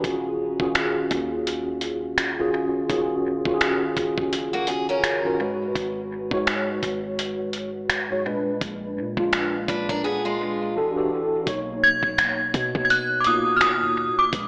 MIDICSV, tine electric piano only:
0, 0, Header, 1, 2, 480
1, 0, Start_track
1, 0, Key_signature, -6, "minor"
1, 0, Tempo, 714286
1, 27, Time_signature, 4, 2, 24, 8
1, 9729, End_track
2, 0, Start_track
2, 0, Title_t, "Tine electric piano"
2, 0, Program_c, 0, 4
2, 0, Control_c, 0, 64, 127
2, 23, Note_on_c, 0, 51, 76
2, 26, Note_on_c, 0, 61, 71
2, 29, Note_on_c, 0, 65, 75
2, 32, Note_on_c, 0, 66, 75
2, 36, Note_on_c, 0, 68, 90
2, 37, Control_c, 0, 64, 0
2, 150, Control_c, 0, 64, 127
2, 249, Note_off_c, 0, 51, 0
2, 251, Note_off_c, 0, 61, 0
2, 252, Note_off_c, 0, 65, 0
2, 254, Note_off_c, 0, 66, 0
2, 256, Note_off_c, 0, 68, 0
2, 404, Note_on_c, 0, 51, 83
2, 407, Note_on_c, 0, 61, 75
2, 409, Note_on_c, 0, 65, 77
2, 412, Note_on_c, 0, 66, 75
2, 415, Note_on_c, 0, 68, 93
2, 978, Note_off_c, 0, 51, 0
2, 979, Note_off_c, 0, 61, 0
2, 980, Note_off_c, 0, 65, 0
2, 982, Note_off_c, 0, 66, 0
2, 983, Note_off_c, 0, 68, 0
2, 1604, Note_on_c, 0, 51, 77
2, 1608, Note_on_c, 0, 61, 75
2, 1610, Note_on_c, 0, 65, 73
2, 1614, Note_on_c, 0, 66, 72
2, 1616, Note_on_c, 0, 68, 88
2, 1824, Note_off_c, 0, 51, 0
2, 1825, Note_off_c, 0, 61, 0
2, 1826, Note_off_c, 0, 65, 0
2, 1828, Note_off_c, 0, 66, 0
2, 1830, Note_off_c, 0, 68, 0
2, 1944, Note_on_c, 0, 51, 82
2, 1946, Note_on_c, 0, 61, 72
2, 1950, Note_on_c, 0, 65, 75
2, 1953, Note_on_c, 0, 66, 75
2, 1955, Note_on_c, 0, 68, 86
2, 2170, Note_off_c, 0, 51, 0
2, 2171, Note_off_c, 0, 61, 0
2, 2173, Note_off_c, 0, 65, 0
2, 2174, Note_off_c, 0, 66, 0
2, 2175, Note_off_c, 0, 68, 0
2, 2323, Note_on_c, 0, 51, 82
2, 2326, Note_on_c, 0, 61, 76
2, 2328, Note_on_c, 0, 65, 77
2, 2332, Note_on_c, 0, 66, 78
2, 2334, Note_on_c, 0, 67, 74
2, 2367, Note_off_c, 0, 67, 0
2, 2378, Note_on_c, 0, 68, 98
2, 2897, Note_off_c, 0, 51, 0
2, 2899, Note_off_c, 0, 61, 0
2, 2900, Note_off_c, 0, 65, 0
2, 2902, Note_off_c, 0, 66, 0
2, 2925, Note_off_c, 0, 68, 0
2, 3523, Note_on_c, 0, 51, 82
2, 3526, Note_on_c, 0, 61, 72
2, 3529, Note_on_c, 0, 65, 74
2, 3532, Note_on_c, 0, 66, 74
2, 3534, Note_on_c, 0, 70, 89
2, 3624, Note_off_c, 0, 66, 0
2, 3625, Note_on_c, 0, 44, 88
2, 3626, Note_off_c, 0, 51, 0
2, 3627, Note_off_c, 0, 61, 0
2, 3628, Note_off_c, 0, 65, 0
2, 3629, Note_on_c, 0, 56, 81
2, 3631, Note_off_c, 0, 70, 0
2, 3632, Note_on_c, 0, 66, 80
2, 3635, Note_on_c, 0, 71, 93
2, 3636, Control_c, 0, 64, 0
2, 3775, Control_c, 0, 64, 127
2, 4106, Note_off_c, 0, 44, 0
2, 4108, Note_off_c, 0, 56, 0
2, 4110, Note_off_c, 0, 66, 0
2, 4111, Note_off_c, 0, 71, 0
2, 4245, Note_on_c, 0, 44, 84
2, 4250, Note_on_c, 0, 56, 77
2, 4251, Note_on_c, 0, 66, 76
2, 4256, Note_on_c, 0, 73, 96
2, 4818, Note_off_c, 0, 44, 0
2, 4821, Note_off_c, 0, 56, 0
2, 4821, Note_off_c, 0, 66, 0
2, 4824, Note_off_c, 0, 73, 0
2, 5445, Note_on_c, 0, 44, 83
2, 5448, Note_on_c, 0, 56, 76
2, 5453, Note_on_c, 0, 66, 76
2, 5456, Note_on_c, 0, 73, 88
2, 5541, Note_off_c, 0, 56, 0
2, 5545, Note_on_c, 0, 46, 88
2, 5546, Note_off_c, 0, 44, 0
2, 5549, Note_on_c, 0, 56, 79
2, 5551, Note_off_c, 0, 66, 0
2, 5552, Note_off_c, 0, 73, 0
2, 5553, Note_on_c, 0, 62, 82
2, 5554, Control_c, 0, 64, 0
2, 5557, Note_on_c, 0, 71, 96
2, 5667, Control_c, 0, 64, 127
2, 6026, Note_off_c, 0, 46, 0
2, 6028, Note_off_c, 0, 56, 0
2, 6030, Note_off_c, 0, 62, 0
2, 6032, Note_off_c, 0, 71, 0
2, 6164, Note_on_c, 0, 46, 81
2, 6168, Note_on_c, 0, 56, 76
2, 6171, Note_on_c, 0, 62, 74
2, 6175, Note_on_c, 0, 65, 94
2, 6738, Note_off_c, 0, 46, 0
2, 6740, Note_off_c, 0, 56, 0
2, 6741, Note_off_c, 0, 62, 0
2, 6743, Note_off_c, 0, 65, 0
2, 7227, Note_on_c, 0, 52, 81
2, 7230, Note_on_c, 0, 62, 72
2, 7233, Note_on_c, 0, 66, 73
2, 7236, Note_on_c, 0, 67, 74
2, 7237, Control_c, 0, 64, 0
2, 7239, Note_on_c, 0, 69, 86
2, 7334, Control_c, 0, 64, 127
2, 7338, Note_off_c, 0, 52, 0
2, 7340, Note_off_c, 0, 62, 0
2, 7341, Note_off_c, 0, 66, 0
2, 7343, Note_off_c, 0, 67, 0
2, 7344, Note_off_c, 0, 69, 0
2, 7366, Note_on_c, 0, 52, 78
2, 7367, Note_on_c, 0, 62, 75
2, 7371, Note_on_c, 0, 66, 72
2, 7373, Note_on_c, 0, 67, 70
2, 7376, Note_on_c, 0, 69, 87
2, 7584, Note_off_c, 0, 52, 0
2, 7585, Note_off_c, 0, 62, 0
2, 7587, Note_off_c, 0, 66, 0
2, 7588, Note_off_c, 0, 67, 0
2, 7589, Note_off_c, 0, 69, 0
2, 7708, Note_on_c, 0, 47, 82
2, 7712, Note_on_c, 0, 58, 77
2, 7716, Note_on_c, 0, 63, 77
2, 7717, Control_c, 0, 64, 0
2, 7719, Note_on_c, 0, 73, 94
2, 7837, Control_c, 0, 64, 127
2, 8315, Note_off_c, 0, 47, 0
2, 8317, Note_off_c, 0, 58, 0
2, 8319, Note_off_c, 0, 63, 0
2, 8321, Note_off_c, 0, 73, 0
2, 8907, Note_on_c, 0, 47, 75
2, 8911, Note_on_c, 0, 58, 66
2, 8915, Note_on_c, 0, 63, 63
2, 8918, Note_on_c, 0, 65, 66
2, 8961, Note_on_c, 0, 66, 79
2, 8963, Note_off_c, 0, 65, 0
2, 9356, Note_off_c, 0, 47, 0
2, 9358, Note_off_c, 0, 58, 0
2, 9360, Note_off_c, 0, 63, 0
2, 9383, Note_off_c, 0, 66, 0
2, 9629, Note_on_c, 0, 46, 72
2, 9632, Note_on_c, 0, 56, 66
2, 9636, Note_on_c, 0, 62, 69
2, 9637, Control_c, 0, 64, 0
2, 9639, Note_on_c, 0, 71, 79
2, 9729, Note_off_c, 0, 46, 0
2, 9729, Note_off_c, 0, 56, 0
2, 9729, Note_off_c, 0, 62, 0
2, 9729, Note_off_c, 0, 71, 0
2, 9729, End_track
0, 0, End_of_file